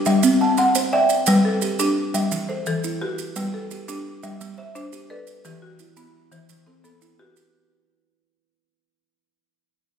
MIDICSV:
0, 0, Header, 1, 4, 480
1, 0, Start_track
1, 0, Tempo, 348230
1, 1756, Time_signature, 12, 3, 24, 8
1, 13765, End_track
2, 0, Start_track
2, 0, Title_t, "Kalimba"
2, 0, Program_c, 0, 108
2, 88, Note_on_c, 0, 76, 65
2, 324, Note_on_c, 0, 60, 84
2, 562, Note_off_c, 0, 76, 0
2, 569, Note_on_c, 0, 78, 58
2, 800, Note_off_c, 0, 60, 0
2, 1042, Note_on_c, 0, 72, 73
2, 1282, Note_off_c, 0, 78, 0
2, 1282, Note_on_c, 0, 79, 65
2, 1519, Note_off_c, 0, 72, 0
2, 1759, Note_on_c, 0, 55, 86
2, 1760, Note_on_c, 0, 71, 72
2, 1998, Note_off_c, 0, 79, 0
2, 2236, Note_off_c, 0, 55, 0
2, 2236, Note_on_c, 0, 67, 58
2, 2463, Note_off_c, 0, 67, 0
2, 2476, Note_off_c, 0, 71, 0
2, 2479, Note_on_c, 0, 67, 79
2, 2956, Note_off_c, 0, 67, 0
2, 2959, Note_on_c, 0, 76, 66
2, 3196, Note_on_c, 0, 52, 84
2, 3436, Note_off_c, 0, 76, 0
2, 3441, Note_on_c, 0, 69, 61
2, 3674, Note_off_c, 0, 52, 0
2, 3920, Note_on_c, 0, 64, 77
2, 4157, Note_off_c, 0, 69, 0
2, 4157, Note_on_c, 0, 71, 59
2, 4396, Note_off_c, 0, 64, 0
2, 4618, Note_off_c, 0, 71, 0
2, 4634, Note_on_c, 0, 55, 97
2, 4635, Note_on_c, 0, 71, 78
2, 5113, Note_off_c, 0, 55, 0
2, 5119, Note_on_c, 0, 67, 58
2, 5345, Note_off_c, 0, 67, 0
2, 5354, Note_off_c, 0, 71, 0
2, 5362, Note_on_c, 0, 67, 81
2, 5836, Note_on_c, 0, 76, 63
2, 5837, Note_off_c, 0, 67, 0
2, 6078, Note_on_c, 0, 55, 89
2, 6311, Note_on_c, 0, 72, 68
2, 6554, Note_off_c, 0, 76, 0
2, 6555, Note_off_c, 0, 55, 0
2, 6789, Note_on_c, 0, 67, 72
2, 7032, Note_off_c, 0, 72, 0
2, 7036, Note_on_c, 0, 74, 66
2, 7271, Note_off_c, 0, 67, 0
2, 7517, Note_on_c, 0, 52, 85
2, 7521, Note_on_c, 0, 67, 80
2, 7755, Note_off_c, 0, 74, 0
2, 7996, Note_off_c, 0, 52, 0
2, 7998, Note_on_c, 0, 64, 58
2, 8221, Note_off_c, 0, 64, 0
2, 8237, Note_on_c, 0, 64, 73
2, 8238, Note_off_c, 0, 67, 0
2, 8714, Note_on_c, 0, 72, 72
2, 8716, Note_off_c, 0, 64, 0
2, 8958, Note_on_c, 0, 52, 74
2, 9197, Note_on_c, 0, 69, 57
2, 9435, Note_off_c, 0, 72, 0
2, 9437, Note_off_c, 0, 52, 0
2, 9678, Note_on_c, 0, 64, 71
2, 9917, Note_off_c, 0, 69, 0
2, 9917, Note_on_c, 0, 71, 64
2, 10158, Note_off_c, 0, 64, 0
2, 10638, Note_off_c, 0, 71, 0
2, 13765, End_track
3, 0, Start_track
3, 0, Title_t, "Marimba"
3, 0, Program_c, 1, 12
3, 88, Note_on_c, 1, 55, 84
3, 323, Note_off_c, 1, 55, 0
3, 565, Note_on_c, 1, 81, 63
3, 802, Note_on_c, 1, 60, 78
3, 805, Note_on_c, 1, 78, 67
3, 1279, Note_off_c, 1, 60, 0
3, 1280, Note_off_c, 1, 81, 0
3, 1280, Note_on_c, 1, 76, 81
3, 1282, Note_on_c, 1, 74, 63
3, 1519, Note_off_c, 1, 78, 0
3, 1757, Note_off_c, 1, 76, 0
3, 1759, Note_on_c, 1, 55, 92
3, 1997, Note_on_c, 1, 69, 58
3, 1998, Note_off_c, 1, 74, 0
3, 2236, Note_off_c, 1, 55, 0
3, 2474, Note_on_c, 1, 62, 79
3, 2715, Note_off_c, 1, 69, 0
3, 2953, Note_off_c, 1, 62, 0
3, 2953, Note_on_c, 1, 55, 82
3, 3193, Note_off_c, 1, 55, 0
3, 3428, Note_on_c, 1, 72, 62
3, 3678, Note_on_c, 1, 52, 77
3, 3680, Note_on_c, 1, 69, 72
3, 4150, Note_off_c, 1, 72, 0
3, 4155, Note_off_c, 1, 52, 0
3, 4156, Note_on_c, 1, 67, 76
3, 4160, Note_on_c, 1, 66, 67
3, 4396, Note_off_c, 1, 69, 0
3, 4634, Note_off_c, 1, 67, 0
3, 4638, Note_on_c, 1, 55, 91
3, 4876, Note_off_c, 1, 66, 0
3, 4878, Note_on_c, 1, 69, 69
3, 5115, Note_off_c, 1, 55, 0
3, 5353, Note_on_c, 1, 62, 85
3, 5595, Note_off_c, 1, 69, 0
3, 5833, Note_off_c, 1, 62, 0
3, 5836, Note_on_c, 1, 55, 80
3, 6315, Note_off_c, 1, 55, 0
3, 6317, Note_on_c, 1, 76, 67
3, 6551, Note_on_c, 1, 72, 75
3, 6552, Note_on_c, 1, 62, 93
3, 7030, Note_on_c, 1, 71, 79
3, 7031, Note_on_c, 1, 69, 74
3, 7033, Note_off_c, 1, 62, 0
3, 7035, Note_off_c, 1, 76, 0
3, 7272, Note_off_c, 1, 72, 0
3, 7510, Note_on_c, 1, 52, 92
3, 7512, Note_off_c, 1, 71, 0
3, 7749, Note_on_c, 1, 66, 68
3, 7753, Note_off_c, 1, 69, 0
3, 7992, Note_off_c, 1, 52, 0
3, 8226, Note_on_c, 1, 59, 79
3, 8472, Note_off_c, 1, 66, 0
3, 8709, Note_on_c, 1, 52, 83
3, 8711, Note_off_c, 1, 59, 0
3, 9187, Note_on_c, 1, 60, 66
3, 9193, Note_off_c, 1, 52, 0
3, 9429, Note_on_c, 1, 59, 80
3, 9429, Note_on_c, 1, 69, 70
3, 9912, Note_off_c, 1, 60, 0
3, 9913, Note_off_c, 1, 59, 0
3, 9916, Note_on_c, 1, 66, 69
3, 9916, Note_on_c, 1, 67, 81
3, 10154, Note_off_c, 1, 69, 0
3, 10397, Note_off_c, 1, 67, 0
3, 10638, Note_off_c, 1, 66, 0
3, 13765, End_track
4, 0, Start_track
4, 0, Title_t, "Drums"
4, 76, Note_on_c, 9, 70, 57
4, 214, Note_off_c, 9, 70, 0
4, 316, Note_on_c, 9, 70, 78
4, 454, Note_off_c, 9, 70, 0
4, 791, Note_on_c, 9, 70, 51
4, 929, Note_off_c, 9, 70, 0
4, 1034, Note_on_c, 9, 70, 72
4, 1172, Note_off_c, 9, 70, 0
4, 1509, Note_on_c, 9, 70, 60
4, 1647, Note_off_c, 9, 70, 0
4, 1743, Note_on_c, 9, 70, 71
4, 1880, Note_off_c, 9, 70, 0
4, 2229, Note_on_c, 9, 70, 61
4, 2367, Note_off_c, 9, 70, 0
4, 2471, Note_on_c, 9, 70, 85
4, 2609, Note_off_c, 9, 70, 0
4, 2956, Note_on_c, 9, 70, 65
4, 3094, Note_off_c, 9, 70, 0
4, 3191, Note_on_c, 9, 70, 76
4, 3329, Note_off_c, 9, 70, 0
4, 3670, Note_on_c, 9, 70, 63
4, 3808, Note_off_c, 9, 70, 0
4, 3913, Note_on_c, 9, 70, 79
4, 4051, Note_off_c, 9, 70, 0
4, 4390, Note_on_c, 9, 70, 63
4, 4528, Note_off_c, 9, 70, 0
4, 4631, Note_on_c, 9, 70, 78
4, 4769, Note_off_c, 9, 70, 0
4, 5113, Note_on_c, 9, 70, 61
4, 5250, Note_off_c, 9, 70, 0
4, 5354, Note_on_c, 9, 70, 85
4, 5492, Note_off_c, 9, 70, 0
4, 5831, Note_on_c, 9, 70, 65
4, 5969, Note_off_c, 9, 70, 0
4, 6078, Note_on_c, 9, 70, 69
4, 6216, Note_off_c, 9, 70, 0
4, 6555, Note_on_c, 9, 70, 58
4, 6693, Note_off_c, 9, 70, 0
4, 6790, Note_on_c, 9, 70, 68
4, 6928, Note_off_c, 9, 70, 0
4, 7264, Note_on_c, 9, 70, 58
4, 7402, Note_off_c, 9, 70, 0
4, 7508, Note_on_c, 9, 70, 67
4, 7646, Note_off_c, 9, 70, 0
4, 7983, Note_on_c, 9, 70, 55
4, 8121, Note_off_c, 9, 70, 0
4, 8223, Note_on_c, 9, 70, 78
4, 8361, Note_off_c, 9, 70, 0
4, 8710, Note_on_c, 9, 70, 61
4, 8848, Note_off_c, 9, 70, 0
4, 8948, Note_on_c, 9, 70, 70
4, 9086, Note_off_c, 9, 70, 0
4, 9434, Note_on_c, 9, 70, 63
4, 9572, Note_off_c, 9, 70, 0
4, 9670, Note_on_c, 9, 70, 72
4, 9808, Note_off_c, 9, 70, 0
4, 10150, Note_on_c, 9, 70, 68
4, 10288, Note_off_c, 9, 70, 0
4, 13765, End_track
0, 0, End_of_file